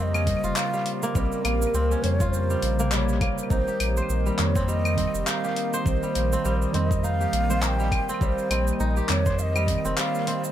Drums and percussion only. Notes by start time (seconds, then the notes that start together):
0.14 cabasa, claves
0.27 kick, open hi-hat
0.44 cabasa
0.56 clap, cabasa
0.73 cabasa
0.86 open hi-hat
1.03 cabasa
1.15 kick, cabasa
1.32 cabasa
1.45 open hi-hat, claves
1.62 cabasa
1.74 cabasa
1.91 cabasa
2.04 open hi-hat
2.20 kick, cabasa
2.33 cabasa
2.50 cabasa
2.62 open hi-hat
2.79 cabasa
2.92 clap, cabasa
3.09 cabasa
3.21 kick, open hi-hat, claves
3.38 cabasa
3.50 kick, cabasa
3.68 cabasa
3.80 open hi-hat, claves
3.97 cabasa
4.10 cabasa
4.26 cabasa
4.39 clap, open hi-hat
4.56 kick, cabasa
4.68 cabasa
4.85 cabasa, claves
4.98 kick, open hi-hat
5.15 cabasa
5.27 clap, cabasa
5.44 cabasa
5.56 open hi-hat
5.73 cabasa
5.86 kick, cabasa
6.03 cabasa
6.15 open hi-hat
6.33 cabasa
6.45 cabasa
6.62 cabasa
6.74 open hi-hat
6.91 kick, cabasa
7.04 cabasa
7.21 cabasa
7.33 open hi-hat
7.50 cabasa
7.63 clap, cabasa
7.80 cabasa
7.92 kick, open hi-hat, claves
8.09 cabasa
8.21 kick, cabasa
8.38 cabasa
8.51 open hi-hat, claves
8.67 cabasa
8.80 cabasa
8.97 cabasa
9.09 clap, open hi-hat
9.26 kick, cabasa
9.39 cabasa
9.56 cabasa, claves
9.68 kick, open hi-hat
9.85 cabasa
9.98 clap, cabasa
10.15 cabasa
10.27 open hi-hat
10.44 cabasa